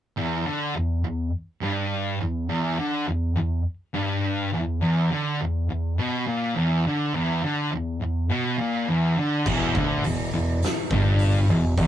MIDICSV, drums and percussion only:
0, 0, Header, 1, 2, 480
1, 0, Start_track
1, 0, Key_signature, 1, "minor"
1, 0, Tempo, 580833
1, 144, Time_signature, 4, 2, 24, 8
1, 9811, End_track
2, 0, Start_track
2, 0, Title_t, "Drums"
2, 7817, Note_on_c, 9, 49, 118
2, 7818, Note_on_c, 9, 36, 102
2, 7899, Note_off_c, 9, 49, 0
2, 7901, Note_off_c, 9, 36, 0
2, 8057, Note_on_c, 9, 36, 102
2, 8140, Note_off_c, 9, 36, 0
2, 8298, Note_on_c, 9, 46, 64
2, 8380, Note_off_c, 9, 46, 0
2, 8779, Note_on_c, 9, 46, 67
2, 8798, Note_on_c, 9, 38, 114
2, 8862, Note_off_c, 9, 46, 0
2, 8881, Note_off_c, 9, 38, 0
2, 9014, Note_on_c, 9, 36, 117
2, 9096, Note_off_c, 9, 36, 0
2, 9248, Note_on_c, 9, 46, 62
2, 9330, Note_off_c, 9, 46, 0
2, 9732, Note_on_c, 9, 36, 113
2, 9736, Note_on_c, 9, 46, 64
2, 9811, Note_off_c, 9, 36, 0
2, 9811, Note_off_c, 9, 46, 0
2, 9811, End_track
0, 0, End_of_file